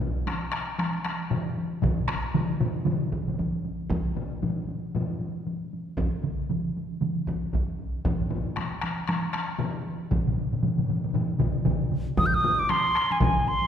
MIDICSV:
0, 0, Header, 1, 3, 480
1, 0, Start_track
1, 0, Tempo, 517688
1, 1694, Time_signature, 4, 2, 24, 8
1, 12676, End_track
2, 0, Start_track
2, 0, Title_t, "Piccolo"
2, 0, Program_c, 0, 72
2, 11293, Note_on_c, 0, 87, 99
2, 11369, Note_on_c, 0, 91, 78
2, 11383, Note_off_c, 0, 87, 0
2, 11444, Note_on_c, 0, 87, 99
2, 11458, Note_off_c, 0, 91, 0
2, 11674, Note_on_c, 0, 86, 91
2, 11688, Note_off_c, 0, 87, 0
2, 11773, Note_on_c, 0, 84, 97
2, 11787, Note_off_c, 0, 86, 0
2, 12162, Note_on_c, 0, 80, 74
2, 12175, Note_off_c, 0, 84, 0
2, 12248, Note_off_c, 0, 80, 0
2, 12253, Note_on_c, 0, 80, 72
2, 12499, Note_on_c, 0, 84, 83
2, 12513, Note_off_c, 0, 80, 0
2, 12676, Note_off_c, 0, 84, 0
2, 12676, End_track
3, 0, Start_track
3, 0, Title_t, "Taiko and cinematic ensemble drums"
3, 11, Note_on_c, 9, 45, 93
3, 11, Note_on_c, 9, 48, 52
3, 103, Note_off_c, 9, 45, 0
3, 104, Note_off_c, 9, 48, 0
3, 155, Note_on_c, 9, 48, 27
3, 247, Note_off_c, 9, 48, 0
3, 251, Note_on_c, 9, 48, 71
3, 256, Note_on_c, 9, 37, 72
3, 344, Note_off_c, 9, 48, 0
3, 348, Note_off_c, 9, 37, 0
3, 486, Note_on_c, 9, 37, 81
3, 578, Note_off_c, 9, 37, 0
3, 638, Note_on_c, 9, 48, 24
3, 729, Note_off_c, 9, 48, 0
3, 729, Note_on_c, 9, 48, 75
3, 733, Note_on_c, 9, 37, 70
3, 822, Note_off_c, 9, 48, 0
3, 826, Note_off_c, 9, 37, 0
3, 879, Note_on_c, 9, 48, 23
3, 972, Note_off_c, 9, 48, 0
3, 974, Note_on_c, 9, 48, 58
3, 975, Note_on_c, 9, 37, 68
3, 1067, Note_off_c, 9, 48, 0
3, 1068, Note_off_c, 9, 37, 0
3, 1208, Note_on_c, 9, 48, 67
3, 1216, Note_on_c, 9, 45, 105
3, 1300, Note_off_c, 9, 48, 0
3, 1308, Note_off_c, 9, 45, 0
3, 1354, Note_on_c, 9, 48, 22
3, 1447, Note_off_c, 9, 48, 0
3, 1455, Note_on_c, 9, 48, 54
3, 1548, Note_off_c, 9, 48, 0
3, 1603, Note_on_c, 9, 48, 23
3, 1688, Note_off_c, 9, 48, 0
3, 1688, Note_on_c, 9, 45, 96
3, 1688, Note_on_c, 9, 48, 73
3, 1690, Note_on_c, 9, 47, 97
3, 1695, Note_on_c, 9, 41, 86
3, 1781, Note_off_c, 9, 45, 0
3, 1781, Note_off_c, 9, 48, 0
3, 1783, Note_off_c, 9, 47, 0
3, 1788, Note_off_c, 9, 41, 0
3, 1836, Note_on_c, 9, 48, 21
3, 1928, Note_on_c, 9, 37, 71
3, 1929, Note_off_c, 9, 48, 0
3, 1930, Note_off_c, 9, 37, 0
3, 1930, Note_on_c, 9, 37, 80
3, 1934, Note_on_c, 9, 48, 55
3, 2023, Note_off_c, 9, 37, 0
3, 2026, Note_off_c, 9, 48, 0
3, 2077, Note_on_c, 9, 48, 24
3, 2170, Note_off_c, 9, 48, 0
3, 2171, Note_on_c, 9, 48, 66
3, 2175, Note_on_c, 9, 45, 92
3, 2175, Note_on_c, 9, 47, 99
3, 2263, Note_off_c, 9, 48, 0
3, 2267, Note_off_c, 9, 45, 0
3, 2267, Note_off_c, 9, 47, 0
3, 2316, Note_on_c, 9, 48, 23
3, 2409, Note_off_c, 9, 48, 0
3, 2411, Note_on_c, 9, 48, 59
3, 2413, Note_on_c, 9, 47, 85
3, 2417, Note_on_c, 9, 45, 92
3, 2504, Note_off_c, 9, 48, 0
3, 2505, Note_off_c, 9, 47, 0
3, 2509, Note_off_c, 9, 45, 0
3, 2560, Note_on_c, 9, 48, 25
3, 2649, Note_on_c, 9, 47, 110
3, 2653, Note_off_c, 9, 48, 0
3, 2655, Note_on_c, 9, 45, 95
3, 2660, Note_on_c, 9, 48, 79
3, 2742, Note_off_c, 9, 47, 0
3, 2747, Note_off_c, 9, 45, 0
3, 2752, Note_off_c, 9, 48, 0
3, 2803, Note_on_c, 9, 48, 23
3, 2892, Note_on_c, 9, 41, 72
3, 2895, Note_off_c, 9, 48, 0
3, 2904, Note_on_c, 9, 48, 53
3, 2985, Note_off_c, 9, 41, 0
3, 2997, Note_off_c, 9, 48, 0
3, 3037, Note_on_c, 9, 47, 64
3, 3041, Note_on_c, 9, 45, 70
3, 3047, Note_on_c, 9, 48, 51
3, 3130, Note_off_c, 9, 47, 0
3, 3134, Note_off_c, 9, 45, 0
3, 3138, Note_on_c, 9, 41, 66
3, 3140, Note_off_c, 9, 48, 0
3, 3146, Note_on_c, 9, 48, 74
3, 3231, Note_off_c, 9, 41, 0
3, 3238, Note_off_c, 9, 48, 0
3, 3286, Note_on_c, 9, 48, 20
3, 3379, Note_off_c, 9, 48, 0
3, 3381, Note_on_c, 9, 48, 57
3, 3474, Note_off_c, 9, 48, 0
3, 3534, Note_on_c, 9, 48, 23
3, 3617, Note_on_c, 9, 41, 94
3, 3626, Note_off_c, 9, 48, 0
3, 3631, Note_on_c, 9, 48, 65
3, 3710, Note_off_c, 9, 41, 0
3, 3724, Note_off_c, 9, 48, 0
3, 3779, Note_on_c, 9, 48, 22
3, 3861, Note_on_c, 9, 45, 92
3, 3872, Note_off_c, 9, 48, 0
3, 3954, Note_off_c, 9, 45, 0
3, 4015, Note_on_c, 9, 48, 22
3, 4102, Note_on_c, 9, 45, 79
3, 4107, Note_off_c, 9, 48, 0
3, 4107, Note_on_c, 9, 48, 76
3, 4194, Note_off_c, 9, 45, 0
3, 4199, Note_off_c, 9, 48, 0
3, 4252, Note_on_c, 9, 48, 24
3, 4343, Note_off_c, 9, 48, 0
3, 4343, Note_on_c, 9, 48, 57
3, 4436, Note_off_c, 9, 48, 0
3, 4489, Note_on_c, 9, 48, 24
3, 4582, Note_off_c, 9, 48, 0
3, 4587, Note_on_c, 9, 48, 74
3, 4588, Note_on_c, 9, 45, 92
3, 4680, Note_off_c, 9, 48, 0
3, 4681, Note_off_c, 9, 45, 0
3, 4732, Note_on_c, 9, 48, 20
3, 4824, Note_off_c, 9, 48, 0
3, 4828, Note_on_c, 9, 48, 57
3, 4920, Note_off_c, 9, 48, 0
3, 5069, Note_on_c, 9, 48, 67
3, 5162, Note_off_c, 9, 48, 0
3, 5220, Note_on_c, 9, 48, 23
3, 5313, Note_off_c, 9, 48, 0
3, 5314, Note_on_c, 9, 48, 51
3, 5407, Note_off_c, 9, 48, 0
3, 5457, Note_on_c, 9, 48, 27
3, 5544, Note_on_c, 9, 41, 97
3, 5550, Note_off_c, 9, 48, 0
3, 5553, Note_on_c, 9, 48, 80
3, 5637, Note_off_c, 9, 41, 0
3, 5645, Note_off_c, 9, 48, 0
3, 5698, Note_on_c, 9, 48, 25
3, 5781, Note_on_c, 9, 47, 90
3, 5790, Note_off_c, 9, 48, 0
3, 5790, Note_on_c, 9, 48, 49
3, 5874, Note_off_c, 9, 47, 0
3, 5882, Note_off_c, 9, 48, 0
3, 5929, Note_on_c, 9, 48, 26
3, 6022, Note_off_c, 9, 48, 0
3, 6022, Note_on_c, 9, 47, 88
3, 6027, Note_on_c, 9, 48, 70
3, 6115, Note_off_c, 9, 47, 0
3, 6120, Note_off_c, 9, 48, 0
3, 6173, Note_on_c, 9, 48, 24
3, 6266, Note_off_c, 9, 48, 0
3, 6273, Note_on_c, 9, 48, 58
3, 6365, Note_off_c, 9, 48, 0
3, 6418, Note_on_c, 9, 48, 25
3, 6499, Note_on_c, 9, 47, 97
3, 6511, Note_off_c, 9, 48, 0
3, 6511, Note_on_c, 9, 48, 72
3, 6591, Note_off_c, 9, 47, 0
3, 6604, Note_off_c, 9, 48, 0
3, 6656, Note_on_c, 9, 48, 23
3, 6743, Note_on_c, 9, 41, 84
3, 6749, Note_off_c, 9, 48, 0
3, 6754, Note_on_c, 9, 48, 58
3, 6835, Note_off_c, 9, 41, 0
3, 6846, Note_off_c, 9, 48, 0
3, 6981, Note_on_c, 9, 41, 81
3, 6992, Note_on_c, 9, 48, 70
3, 7074, Note_off_c, 9, 41, 0
3, 7085, Note_off_c, 9, 48, 0
3, 7139, Note_on_c, 9, 48, 24
3, 7227, Note_off_c, 9, 48, 0
3, 7227, Note_on_c, 9, 48, 54
3, 7320, Note_off_c, 9, 48, 0
3, 7369, Note_on_c, 9, 48, 26
3, 7462, Note_off_c, 9, 48, 0
3, 7463, Note_on_c, 9, 41, 102
3, 7466, Note_on_c, 9, 45, 70
3, 7470, Note_on_c, 9, 48, 80
3, 7555, Note_off_c, 9, 41, 0
3, 7559, Note_off_c, 9, 45, 0
3, 7562, Note_off_c, 9, 48, 0
3, 7605, Note_on_c, 9, 45, 61
3, 7620, Note_on_c, 9, 48, 23
3, 7698, Note_off_c, 9, 45, 0
3, 7699, Note_on_c, 9, 45, 98
3, 7711, Note_off_c, 9, 48, 0
3, 7711, Note_on_c, 9, 48, 52
3, 7792, Note_off_c, 9, 45, 0
3, 7804, Note_off_c, 9, 48, 0
3, 7860, Note_on_c, 9, 48, 28
3, 7939, Note_on_c, 9, 37, 63
3, 7948, Note_off_c, 9, 48, 0
3, 7948, Note_on_c, 9, 48, 72
3, 8032, Note_off_c, 9, 37, 0
3, 8040, Note_off_c, 9, 48, 0
3, 8098, Note_on_c, 9, 48, 25
3, 8174, Note_on_c, 9, 37, 75
3, 8190, Note_off_c, 9, 48, 0
3, 8191, Note_on_c, 9, 48, 52
3, 8266, Note_off_c, 9, 37, 0
3, 8283, Note_off_c, 9, 48, 0
3, 8332, Note_on_c, 9, 48, 23
3, 8422, Note_on_c, 9, 37, 72
3, 8425, Note_off_c, 9, 48, 0
3, 8426, Note_on_c, 9, 48, 79
3, 8515, Note_off_c, 9, 37, 0
3, 8519, Note_off_c, 9, 48, 0
3, 8575, Note_on_c, 9, 48, 19
3, 8654, Note_on_c, 9, 37, 77
3, 8665, Note_off_c, 9, 48, 0
3, 8665, Note_on_c, 9, 48, 52
3, 8747, Note_off_c, 9, 37, 0
3, 8758, Note_off_c, 9, 48, 0
3, 8888, Note_on_c, 9, 45, 108
3, 8901, Note_on_c, 9, 48, 68
3, 8981, Note_off_c, 9, 45, 0
3, 8993, Note_off_c, 9, 48, 0
3, 9046, Note_on_c, 9, 48, 20
3, 9139, Note_off_c, 9, 48, 0
3, 9143, Note_on_c, 9, 48, 47
3, 9236, Note_off_c, 9, 48, 0
3, 9289, Note_on_c, 9, 48, 21
3, 9372, Note_on_c, 9, 45, 69
3, 9375, Note_on_c, 9, 47, 71
3, 9379, Note_on_c, 9, 41, 85
3, 9380, Note_off_c, 9, 48, 0
3, 9380, Note_on_c, 9, 48, 69
3, 9465, Note_off_c, 9, 45, 0
3, 9467, Note_off_c, 9, 47, 0
3, 9471, Note_off_c, 9, 41, 0
3, 9473, Note_off_c, 9, 48, 0
3, 9518, Note_on_c, 9, 47, 70
3, 9522, Note_on_c, 9, 45, 71
3, 9524, Note_on_c, 9, 48, 21
3, 9611, Note_off_c, 9, 47, 0
3, 9615, Note_off_c, 9, 45, 0
3, 9615, Note_off_c, 9, 48, 0
3, 9615, Note_on_c, 9, 48, 43
3, 9708, Note_off_c, 9, 48, 0
3, 9760, Note_on_c, 9, 47, 69
3, 9762, Note_on_c, 9, 45, 62
3, 9853, Note_off_c, 9, 47, 0
3, 9854, Note_off_c, 9, 45, 0
3, 9854, Note_on_c, 9, 45, 66
3, 9854, Note_on_c, 9, 47, 68
3, 9860, Note_on_c, 9, 48, 68
3, 9947, Note_off_c, 9, 45, 0
3, 9947, Note_off_c, 9, 47, 0
3, 9953, Note_off_c, 9, 48, 0
3, 9996, Note_on_c, 9, 47, 67
3, 10002, Note_on_c, 9, 45, 66
3, 10008, Note_on_c, 9, 48, 22
3, 10089, Note_off_c, 9, 47, 0
3, 10092, Note_on_c, 9, 47, 68
3, 10094, Note_off_c, 9, 45, 0
3, 10099, Note_on_c, 9, 45, 71
3, 10101, Note_off_c, 9, 48, 0
3, 10102, Note_on_c, 9, 48, 58
3, 10184, Note_off_c, 9, 47, 0
3, 10191, Note_off_c, 9, 45, 0
3, 10195, Note_off_c, 9, 48, 0
3, 10234, Note_on_c, 9, 47, 73
3, 10235, Note_on_c, 9, 45, 73
3, 10244, Note_on_c, 9, 48, 23
3, 10327, Note_off_c, 9, 47, 0
3, 10328, Note_off_c, 9, 45, 0
3, 10329, Note_on_c, 9, 47, 99
3, 10333, Note_on_c, 9, 45, 96
3, 10337, Note_off_c, 9, 48, 0
3, 10339, Note_on_c, 9, 48, 73
3, 10422, Note_off_c, 9, 47, 0
3, 10426, Note_off_c, 9, 45, 0
3, 10432, Note_off_c, 9, 48, 0
3, 10484, Note_on_c, 9, 48, 20
3, 10567, Note_on_c, 9, 45, 98
3, 10568, Note_on_c, 9, 47, 102
3, 10576, Note_off_c, 9, 48, 0
3, 10576, Note_on_c, 9, 48, 53
3, 10579, Note_on_c, 9, 41, 71
3, 10660, Note_off_c, 9, 45, 0
3, 10661, Note_off_c, 9, 47, 0
3, 10668, Note_off_c, 9, 48, 0
3, 10672, Note_off_c, 9, 41, 0
3, 10715, Note_on_c, 9, 48, 51
3, 10804, Note_on_c, 9, 47, 106
3, 10808, Note_off_c, 9, 48, 0
3, 10808, Note_on_c, 9, 45, 101
3, 10811, Note_on_c, 9, 48, 68
3, 10815, Note_on_c, 9, 41, 66
3, 10897, Note_off_c, 9, 47, 0
3, 10901, Note_off_c, 9, 45, 0
3, 10903, Note_off_c, 9, 48, 0
3, 10907, Note_off_c, 9, 41, 0
3, 10959, Note_on_c, 9, 48, 23
3, 11049, Note_on_c, 9, 45, 64
3, 11050, Note_off_c, 9, 48, 0
3, 11050, Note_on_c, 9, 48, 56
3, 11051, Note_on_c, 9, 47, 66
3, 11142, Note_off_c, 9, 45, 0
3, 11142, Note_off_c, 9, 48, 0
3, 11144, Note_off_c, 9, 47, 0
3, 11194, Note_on_c, 9, 48, 23
3, 11287, Note_off_c, 9, 48, 0
3, 11287, Note_on_c, 9, 45, 92
3, 11289, Note_on_c, 9, 41, 102
3, 11290, Note_on_c, 9, 48, 76
3, 11380, Note_off_c, 9, 45, 0
3, 11382, Note_off_c, 9, 41, 0
3, 11383, Note_off_c, 9, 48, 0
3, 11535, Note_on_c, 9, 45, 106
3, 11628, Note_off_c, 9, 45, 0
3, 11771, Note_on_c, 9, 37, 69
3, 11771, Note_on_c, 9, 48, 79
3, 11863, Note_off_c, 9, 37, 0
3, 11864, Note_off_c, 9, 48, 0
3, 12013, Note_on_c, 9, 37, 69
3, 12106, Note_off_c, 9, 37, 0
3, 12152, Note_on_c, 9, 48, 60
3, 12240, Note_off_c, 9, 48, 0
3, 12240, Note_on_c, 9, 48, 78
3, 12250, Note_on_c, 9, 41, 118
3, 12252, Note_on_c, 9, 45, 90
3, 12333, Note_off_c, 9, 48, 0
3, 12343, Note_off_c, 9, 41, 0
3, 12345, Note_off_c, 9, 45, 0
3, 12622, Note_on_c, 9, 48, 55
3, 12676, Note_off_c, 9, 48, 0
3, 12676, End_track
0, 0, End_of_file